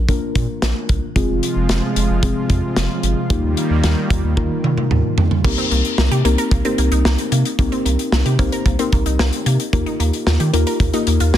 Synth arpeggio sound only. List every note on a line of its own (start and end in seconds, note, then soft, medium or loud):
5.44 5.53 A#3 medium
5.58 5.66 C4 medium
5.71 5.80 A#3 medium
5.98 6.07 A#3 medium
6.11 6.20 G4 medium
6.25 6.33 A#3 medium
6.38 6.47 A#4 medium
6.52 6.60 A#3 medium
6.65 6.73 C4 medium
6.78 6.87 A#3 medium
6.92 7.00 D#4 medium
7.05 7.14 A#3 medium
7.32 7.40 A#3 medium
7.59 7.67 A#3 medium
7.72 7.81 C4 medium
7.85 7.94 A#3 medium
8.12 8.21 A#3 medium
8.26 8.34 G4 medium
8.39 8.47 A#3 medium
8.52 8.61 A#4 medium
8.66 8.74 A#3 medium
8.79 8.88 C4 loud
8.93 9.01 A#3 medium
9.06 9.14 D#4 medium
9.19 9.28 A#3 medium
9.46 9.55 A#3 medium
9.73 9.81 A#3 medium
9.86 9.95 D#4 medium
10.00 10.08 A#3 medium
10.27 10.35 A#3 medium
10.40 10.48 G4 medium
10.53 10.62 A#3 medium
10.67 10.75 A#4 medium
10.80 10.89 A#3 medium
10.94 11.02 D#4 medium
11.07 11.16 A#3 medium
11.20 11.29 F4 medium
11.34 11.38 A#3 medium